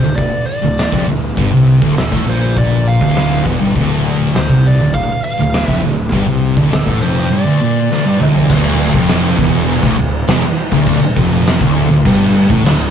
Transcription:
Already playing: D3 E3 G3 C5
0.03 D1 D2
0.16 D5, kick, open hi-hat
0.47 D5, open hi-hat
0.63 D1 D2
0.78 snare, open hi-hat
0.92 F1 F2, kick
1.07 D1 D2, open hi-hat
1.37 G1 G2, kick, open hi-hat
1.52 C2 C3
1.67 open hi-hat
1.82 D1 D2, kick
1.97 D1 D2 A4, snare, open hi-hat
2.12 A1 A2, kick
2.27 A#1 A#2 C5, open hi-hat
2.57 D5, kick, open hi-hat
2.86 F5, open hi-hat
3.01 D1 D2, kick
3.16 snare, open hi-hat
3.45 E1 E2, kick, open hi-hat
3.61 G1 G2
3.75 D1 D2, kick, open hi-hat
4.05 open hi-hat
4.35 D1 D2 C5, snare, open hi-hat
4.50 C2 C3, kick
4.65 D5, open hi-hat
4.80 D1 D2
4.94 F5, kick, open hi-hat
5.24 F5, open hi-hat
5.39 D1 D2
5.53 snare, open hi-hat
5.64 F1 E5, kick
5.69 F2
5.82 D1 D2, open hi-hat
6.12 G1 G2, kick, open hi-hat
6.28 C2 C3
6.42 open hi-hat
6.57 D1 D2, kick
6.72 D1 D2 A4, snare, open hi-hat
6.87 A1 A2, kick
7.01 F1 F2 C5, open hi-hat
7.17 snare
7.32 G2 D5
7.46 D2
7.61 A#2
7.91 D2, snare
8.06 G2
8.20 D2, mid tom
8.35 floor tom
8.50 D1 D2 D3 A3 E4, kick, crash
8.94 F1 F2, kick
9.08 snare, crash
9.39 E1 E2, kick
9.68 crash
9.83 D1 D2, kick
9.98 D1 D2
10.27 E1 E2, snare, crash
10.72 D1 D2, kick
10.87 kick, crash
11.02 muted distorted electric guitar stroke, muted fingered electric bass stroke
11.16 F1 F2, kick, snare
11.46 snare, crash
11.61 D1 D2, kick
11.90 D1 D2
12.05 G1 G2, kick, crash
12.50 A1 A2, kick
12.65 D1 D2, snare, crash

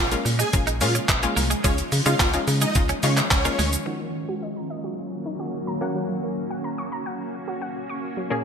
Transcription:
Already playing: A#1 C#3 F3 G#3 A#3 F4
0.12 G#3 A#3 C#4 F4, closed hi-hat, shaker
0.25 A#2, muted clean electric guitar stroke, open hi-hat, shaker
0.39 D#4 G#4 G#5, closed hi-hat, shaker
0.53 A#1 G#3 A#3 C#4 F4, kick, closed hi-hat, shaker
0.67 D#4, closed hi-hat, shaker
0.81 A#2 G#3 A#3 C#4 F4 G#4 F5, muted clean electric guitar stroke, open hi-hat, shaker
0.95 C#4, closed hi-hat, shaker
1.09 A#1, muted clean electric guitar stroke, kick, clap, closed hi-hat, shaker
1.23 G#3 A#3 C#4 F4, closed hi-hat, shaker
1.37 C2 A#3, open hi-hat, shaker
1.50 G#3, closed hi-hat, shaker
1.64 C#2 D#3 G#3 C#4 D#4 F4 C#5, kick, closed hi-hat, shaker
1.78 closed hi-hat, shaker
1.92 C#3, muted clean electric guitar stroke, open hi-hat, shaker
2.06 C#3 G#3 C#4 D#4 F4 F5, closed hi-hat, shaker
2.20 C#2 A#3 F4 F5, kick, clap, closed hi-hat, shaker
2.34 G#3 C#4 D#4 F4, closed hi-hat, shaker
2.48 C#3, muted clean electric guitar stroke, open hi-hat, shaker
2.61 G#3 D#4 D#5, closed hi-hat, shaker
2.75 C#2 G#3 C#4 D#4 F4, kick, closed hi-hat, shaker
2.89 C#4, closed hi-hat, shaker
3.03 C#3 G#3 C#4 D#4 F4 C#5, muted clean electric guitar stroke, open hi-hat, shaker
3.17 C#4, clap, closed hi-hat, shaker
3.31 C#2 C#4 C#5, muted clean electric guitar stroke, kick, clap, closed hi-hat, shaker
3.45 G#3 A#3 C#4 D#4 F4, closed hi-hat, shaker
3.59 D2 G#3, open hi-hat, shaker
3.73 closed hi-hat, shaker
3.86 D#3 F#3 A#3 C#4 D#4 F#4
4.01 A#3
4.29 F#4
4.42 D#5
4.56 A#5
4.70 D#5
4.84 F#4
5.26 D#4
5.40 F#4
5.67 A#5
5.81 A#3 C#4 F#4
5.95 F#3
6.09 F#3
6.23 A#3
6.51 F#5
6.64 A#5
6.78 C#6
6.92 A#5
7.06 F#5
7.48 F#4
7.62 F#5
7.89 C#6
8.17 F#3
8.30 A#2 A#3 C#4 G#4

